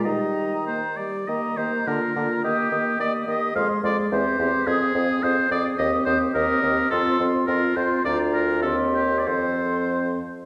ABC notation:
X:1
M:2/4
L:1/16
Q:1/4=106
K:Eb
V:1 name="Flute"
b6 z2 | b2 b2 b2 b2 | e'2 e'2 e'2 e'2 | c'2 c'2 c'2 c'2 |
e'2 e'2 e'2 e'2 | [K:Fmix] e'2 e'2 e'2 e'2 | c'2 c'2 c'2 c'2 | b4 c'4 |
c'6 z2 |]
V:2 name="Oboe"
e4 c2 d2 | e2 c2 B4 | G4 d2 e2 | f2 d2 c4 |
A4 c2 d2 | [K:Fmix] e2 c2 B4 | A2- A/2 z3/2 B2 c2 | d2 B2 A2 G3/2 d/2 |
c6 z2 |]
V:3 name="Clarinet"
E4 z4 | G2 G2 F2 F2 | G2 G2 G2 G2 | A2 A2 G2 G2 |
A2 A2 A2 A2 | [K:Fmix] G2 G2 G2 G2 | F2 F2 F2 F2 | F4 G4 |
A6 z2 |]
V:4 name="French horn"
G,4 B,2 G,2 | B,2 B,2 B,2 B,2 | B,2 B,2 B,2 B,2 | A,2 A,2 C2 C2 |
C2 C2 C2 C2 | [K:Fmix] C2 C2 C2 C2 | C2 C2 C2 C2 | D4 C4 |
C6 z2 |]
V:5 name="Bassoon" clef=bass
E,6 z2 | E,2 E,2 D,2 D,2 | E,2 E,2 E,2 E,2 | F,,2 F,,2 =E,,2 E,,2 |
F,,2 F,,2 F,,2 F,,2 | [K:Fmix] E,,2 E,,2 E,,2 E,,2 | F,,2 F,,2 F,,2 F,,2 | D,,4 E,,4 |
F,,6 z2 |]